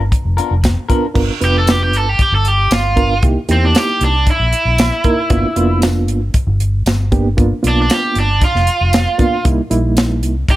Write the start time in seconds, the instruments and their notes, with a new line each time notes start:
Already playing: overdriven electric guitar B4
0.12 kick, closed hi-hat
0.25 fingered electric bass F1
0.37 clean electric guitar B3 D4 F4 A#4, closed hi-hat
0.51 fingered electric bass F1
0.64 kick, snare, closed hi-hat, tambourine
0.89 reed electric piano B3 D4 F4 A#4, clean electric guitar B3 D4 F4 A#4, kick, closed hi-hat
1.14 fingered electric bass G1, reed electric piano B3 D4 F4 A#4, kick, crash
1.41 fingered electric bass F1, reed electric piano B3 D4 F4 B4, closed hi-hat
1.45 overdriven electric guitar G4
1.58 overdriven electric guitar A4
1.67 overdriven electric guitar G4, snare, closed hi-hat, tambourine
1.83 overdriven electric guitar G4
1.93 fingered electric bass G1, overdriven electric guitar A4, closed hi-hat
2.09 overdriven electric guitar G4
2.19 overdriven electric guitar G4, muted fingered electric bass stroke, kick, closed hi-hat
2.32 fingered electric bass G1, overdriven electric guitar A4
2.45 overdriven electric guitar G4, closed hi-hat
2.71 fingered electric bass G1, overdriven electric guitar F4, snare, closed hi-hat, tambourine
2.96 reed electric piano B3 D4 F4 A#4, kick, closed hi-hat
3.23 fingered electric bass C2, reed electric piano A#3 D#4 E4 G4, kick, closed hi-hat
3.49 fingered electric bass E2, reed electric piano A#3 D#4 E4 G4, overdriven electric guitar C4, closed hi-hat
3.65 overdriven electric guitar D4
3.75 overdriven electric guitar G4, snare, closed hi-hat, tambourine
4.01 fingered electric bass C2, overdriven electric guitar D4, closed hi-hat
4.27 kick, closed hi-hat
4.31 overdriven electric guitar E4
4.40 fingered electric bass A#1
4.53 closed hi-hat
4.65 fingered electric bass A#1
4.78 snare, closed hi-hat, tambourine
5.04 reed electric piano A#3 D#4 E4 A#4, kick, closed hi-hat
5.30 fingered electric bass G1, reed electric piano A#3 B3 D4 F4, kick, closed hi-hat
5.56 fingered electric bass F1, reed electric piano A#3 B3 D4 F4, closed hi-hat
5.82 snare, closed hi-hat, tambourine
6.08 fingered electric bass G1, closed hi-hat
6.34 muted fingered electric bass stroke, kick, closed hi-hat
6.47 fingered electric bass G1
6.60 closed hi-hat
6.86 fingered electric bass G1, snare, closed hi-hat, tambourine
7.12 reed electric piano A#3 B3 D4 G4, kick, closed hi-hat
7.37 fingered electric bass G1, reed electric piano A#3 B3 D4 F4, kick, closed hi-hat
7.63 fingered electric bass B1, reed electric piano A#3 B3 D4 F4, closed hi-hat
7.68 overdriven electric guitar D4
7.82 overdriven electric guitar D4
7.90 overdriven electric guitar G4, snare, closed hi-hat, tambourine
8.15 fingered electric bass G1, closed hi-hat
8.20 overdriven electric guitar D4
8.41 overdriven electric guitar F4, kick, closed hi-hat
8.55 fingered electric bass F1, snare
8.67 closed hi-hat
8.81 fingered electric bass F1
8.93 snare, closed hi-hat, tambourine
9.18 reed electric piano A#3 B3 D4 F4, kick, closed hi-hat
9.45 fingered electric bass C2, reed electric piano G3 A#3 D#4 E4, kick, closed hi-hat
9.70 fingered electric bass A#1, reed electric piano G3 A#3 D#4 E4, closed hi-hat
9.97 snare, closed hi-hat, tambourine
10.23 fingered electric bass C2, closed hi-hat
10.49 overdriven electric guitar G4, muted fingered electric bass stroke, kick, closed hi-hat